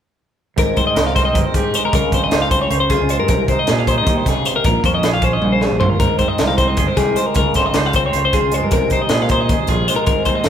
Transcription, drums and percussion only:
0.58 kick loud
0.58 closed hi-hat medium
0.77 kick medium
0.77 closed hi-hat medium
0.96 snare loud
0.96 closed hi-hat medium
1.16 kick medium
1.16 snare soft
1.16 closed hi-hat medium
1.35 kick loud
1.35 closed hi-hat medium
1.54 kick medium
1.54 closed hi-hat medium
1.74 closed hi-hat medium
1.93 kick loud
1.93 closed hi-hat medium
2.12 kick medium
2.12 closed hi-hat medium
2.31 snare loud
2.31 closed hi-hat medium
2.51 kick medium
2.51 closed hi-hat medium
2.71 closed hi-hat medium
2.90 kick medium
2.90 snare soft
2.90 closed hi-hat medium
3.09 closed hi-hat medium
3.28 kick loud
3.28 closed hi-hat medium
3.48 kick medium
3.48 closed hi-hat medium
3.67 snare loud
3.67 closed hi-hat medium
3.87 kick medium
3.87 closed hi-hat medium
4.07 kick loud
4.07 closed hi-hat medium
4.26 kick medium
4.26 snare soft
4.26 closed hi-hat medium
4.45 closed hi-hat medium
4.64 kick loud
4.64 closed hi-hat medium
4.84 kick medium
4.84 closed hi-hat medium
5.03 snare loud
5.03 closed hi-hat medium
5.22 kick medium
5.22 closed hi-hat medium
5.42 high tom medium
5.61 snare medium
5.81 floor tom medium
6.00 kick loud
6.00 closed hi-hat medium
6.19 kick medium
6.19 closed hi-hat soft
6.38 snare loud
6.38 closed hi-hat medium
6.58 kick medium
6.58 closed hi-hat medium
6.77 kick medium
6.77 closed hi-hat medium
6.97 kick medium
6.97 snare soft
6.97 closed hi-hat medium
7.16 closed hi-hat medium
7.34 kick loud
7.34 closed hi-hat medium
7.54 kick medium
7.54 snare soft
7.54 closed hi-hat medium
7.74 snare loud
7.74 closed hi-hat medium
7.93 kick medium
7.93 closed hi-hat medium
8.13 closed hi-hat medium
8.33 kick medium
8.33 closed hi-hat medium
8.52 closed hi-hat medium
8.71 kick loud
8.71 closed hi-hat medium
8.90 kick medium
8.90 closed hi-hat medium
9.09 snare loud
9.09 closed hi-hat medium
9.29 kick medium
9.29 closed hi-hat medium
9.49 kick medium
9.49 closed hi-hat medium
9.67 kick medium
9.67 snare soft
9.67 closed hi-hat medium
9.88 closed hi-hat medium
10.06 kick loud
10.06 closed hi-hat medium
10.25 kick medium
10.25 closed hi-hat medium
10.44 snare loud
10.44 closed hi-hat medium

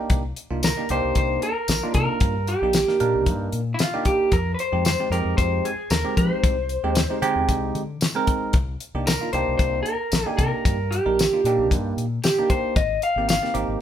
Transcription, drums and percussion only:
0.10 kick loud
0.10 closed hi-hat medium
0.36 closed hi-hat medium
0.63 snare loud
0.63 closed hi-hat medium
0.63 tambourine loud
0.89 closed hi-hat medium
1.15 kick medium
1.15 closed hi-hat medium
1.42 closed hi-hat medium
1.68 snare medium
1.68 closed hi-hat medium
1.68 tambourine medium
1.94 kick medium
1.94 closed hi-hat medium
2.20 kick loud
2.20 closed hi-hat medium
2.48 closed hi-hat medium
2.73 snare loud
2.73 closed hi-hat medium
2.73 tambourine loud
2.88 snare soft
3.00 closed hi-hat medium
3.26 kick medium
3.26 closed hi-hat medium
3.52 closed hi-hat medium
3.79 snare loud
3.79 closed hi-hat medium
3.79 tambourine loud
4.05 kick medium
4.05 closed hi-hat medium
4.32 kick loud
4.32 closed hi-hat medium
4.59 closed hi-hat medium
4.85 snare loud
4.85 closed hi-hat medium
4.85 tambourine loud
5.12 closed hi-hat medium
5.38 kick medium
5.38 closed hi-hat medium
5.65 closed hi-hat medium
5.90 snare loud
5.90 closed hi-hat medium
5.90 tambourine loud
6.17 kick medium
6.17 closed hi-hat medium
6.44 kick loud
6.44 closed hi-hat medium
6.69 closed hi-hat medium
6.95 snare loud
6.95 closed hi-hat medium
6.95 tambourine loud
7.22 closed hi-hat medium
7.49 kick medium
7.49 closed hi-hat medium
7.75 closed hi-hat medium
8.01 snare loud
8.01 closed hi-hat medium
8.01 tambourine medium
8.27 kick medium
8.27 closed hi-hat medium
8.53 kick loud
8.53 closed hi-hat medium
8.80 closed hi-hat medium
9.07 snare loud
9.07 closed hi-hat medium
9.07 tambourine loud
9.33 closed hi-hat medium
9.59 kick medium
9.59 closed hi-hat medium
9.86 closed hi-hat medium
10.12 snare medium
10.12 closed hi-hat medium
10.12 tambourine loud
10.39 kick medium
10.39 closed hi-hat medium
10.65 kick loud
10.65 closed hi-hat medium
10.92 closed hi-hat medium
11.19 snare loud
11.19 closed hi-hat medium
11.19 tambourine loud
11.45 closed hi-hat medium
11.71 kick medium
11.71 closed hi-hat medium
11.98 closed hi-hat medium
12.24 snare loud
12.24 closed hi-hat medium
12.24 tambourine loud
12.50 kick medium
12.50 closed hi-hat medium
12.76 kick loud
12.76 closed hi-hat medium
13.02 closed hi-hat medium
13.29 snare loud
13.29 closed hi-hat medium
13.29 tambourine loud
13.45 snare soft
13.55 closed hi-hat medium

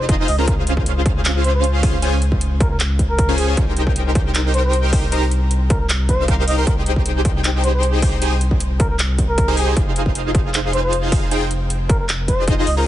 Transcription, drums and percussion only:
0.09 kick loud
0.09 closed hi-hat medium
0.28 open hi-hat medium
0.48 kick loud
0.48 closed hi-hat medium
0.67 closed hi-hat medium
0.77 kick medium
0.86 closed hi-hat medium
1.06 kick loud
1.06 closed hi-hat medium
1.25 clap loud
1.25 closed hi-hat medium
1.44 closed hi-hat medium
1.64 closed hi-hat medium
1.83 kick loud
1.83 open hi-hat medium
2.02 closed hi-hat medium
2.22 closed hi-hat medium
2.32 kick medium
2.41 closed hi-hat medium
2.60 kick loud
2.60 closed hi-hat medium
2.80 clap loud
2.80 closed hi-hat medium
2.99 kick medium
2.99 closed hi-hat medium
3.19 kick loud
3.19 closed hi-hat medium
3.38 open hi-hat medium
3.57 kick loud
3.57 closed hi-hat medium
3.77 closed hi-hat medium
3.87 kick medium
3.96 closed hi-hat medium
4.15 kick loud
4.15 closed hi-hat medium
4.35 clap loud
4.35 closed hi-hat medium
4.54 closed hi-hat medium
4.73 closed hi-hat medium
4.93 kick loud
4.93 open hi-hat medium
5.12 closed hi-hat medium
5.31 closed hi-hat medium
5.51 closed hi-hat medium
5.70 kick loud
5.70 closed hi-hat medium
5.89 clap loud
5.89 closed hi-hat medium
6.09 kick medium
6.09 closed hi-hat medium
6.28 kick loud
6.28 closed hi-hat medium
6.48 open hi-hat loud
6.67 kick loud
6.67 closed hi-hat medium
6.86 closed hi-hat medium
6.96 kick medium
7.06 closed hi-hat medium
7.25 kick loud
7.25 closed hi-hat medium
7.44 clap loud
7.44 closed hi-hat medium
7.64 closed hi-hat medium
7.83 closed hi-hat medium
8.02 kick loud
8.02 open hi-hat medium
8.22 closed hi-hat medium
8.41 closed hi-hat medium
8.51 kick medium
8.60 closed hi-hat medium
8.80 kick loud
8.80 closed hi-hat medium
8.99 clap loud
8.99 closed hi-hat medium
9.18 kick medium
9.18 closed hi-hat medium
9.38 kick loud
9.38 closed hi-hat medium
9.57 open hi-hat medium
9.77 kick loud
9.77 closed hi-hat medium
9.96 closed hi-hat medium
10.06 kick medium
10.15 closed hi-hat medium
10.35 kick loud
10.35 closed hi-hat medium
10.54 clap loud
10.54 closed hi-hat medium
10.73 closed hi-hat medium
10.93 closed hi-hat medium
11.12 kick loud
11.12 open hi-hat medium
11.31 closed hi-hat medium
11.51 closed hi-hat medium
11.70 closed hi-hat medium
11.89 kick loud
11.89 closed hi-hat medium
12.09 clap loud
12.09 closed hi-hat medium
12.28 kick medium
12.28 closed hi-hat medium
12.48 kick loud
12.48 closed hi-hat medium
12.67 open hi-hat medium

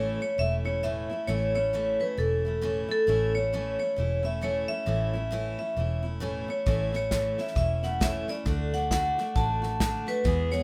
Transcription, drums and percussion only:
6.67 kick loud
6.67 snare soft
6.93 snare soft
7.11 kick medium
7.11 snare medium
7.11 hi-hat pedal medium
7.38 snare soft
7.48 snare soft
7.56 kick loud
7.56 snare soft
7.83 snare soft
8.01 kick medium
8.01 snare loud
8.01 hi-hat pedal medium
8.28 snare soft
8.46 kick medium
8.46 snare soft
8.73 snare soft
8.91 kick medium
8.91 snare loud
8.91 hi-hat pedal medium
9.18 snare soft
9.36 kick loud
9.36 snare soft
9.63 snare soft
9.80 kick medium
9.80 snare loud
9.80 hi-hat pedal medium
10.07 snare soft
10.25 kick loud
10.25 snare soft
10.52 snare soft

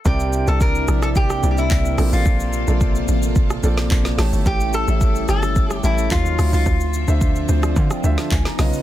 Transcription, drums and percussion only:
0.05 kick loud
0.05 shaker medium
0.20 shaker medium
0.33 shaker medium
0.47 shaker medium
0.61 kick loud
0.61 shaker medium
0.75 shaker medium
0.88 cross-stick medium
0.88 shaker loud
1.02 cross-stick loud
1.02 shaker medium
1.15 kick loud
1.15 shaker medium
1.30 cross-stick medium
1.30 shaker medium
1.43 shaker medium
1.58 shaker medium
1.71 kick medium
1.71 clap loud
1.71 shaker medium
1.85 shaker medium
1.98 cross-stick medium
1.98 open hi-hat medium
1.98 shaker medium
2.13 shaker medium
2.26 kick loud
2.26 shaker medium
2.40 shaker medium
2.53 shaker medium
2.68 shaker medium
2.81 kick loud
2.81 shaker medium
2.95 shaker medium
3.08 shaker medium
3.23 shaker medium
3.36 kick loud
3.36 shaker medium
3.50 cross-stick medium
3.50 shaker medium
3.63 shaker medium
3.78 snare medium
3.78 shaker medium
3.91 kick medium
3.91 clap loud
3.91 shaker medium
4.05 snare medium
4.05 shaker medium
4.19 cross-stick medium
4.19 snare medium
4.19 open hi-hat medium
4.19 shaker medium
4.33 shaker medium
4.46 kick loud
4.46 shaker medium
4.60 shaker medium
4.74 shaker medium
4.88 shaker medium
5.01 kick loud
5.01 shaker medium
5.15 shaker medium
5.28 cross-stick medium
5.28 shaker medium
5.43 cross-stick loud
5.43 shaker medium
5.56 kick loud
5.56 shaker medium
5.70 cross-stick medium
5.70 shaker medium
5.84 shaker medium
5.98 shaker medium
6.11 kick loud
6.11 clap loud
6.11 shaker medium
6.26 shaker medium
6.39 cross-stick medium
6.39 open hi-hat medium
6.39 shaker medium
6.53 shaker medium
6.66 kick loud
6.66 shaker medium
6.80 shaker medium
6.94 shaker medium
7.08 shaker medium
7.21 kick loud
7.21 shaker medium
7.36 shaker medium
7.49 shaker medium
7.63 cross-stick loud
7.63 shaker medium
7.76 kick loud
7.76 shaker medium
7.91 cross-stick medium
7.91 shaker medium
8.04 shaker medium
8.18 snare medium
8.18 shaker medium
8.31 kick medium
8.31 clap loud
8.31 shaker medium
8.45 snare medium
8.45 shaker medium
8.59 cross-stick medium
8.59 snare medium
8.59 open hi-hat medium
8.59 shaker medium
8.73 shaker medium

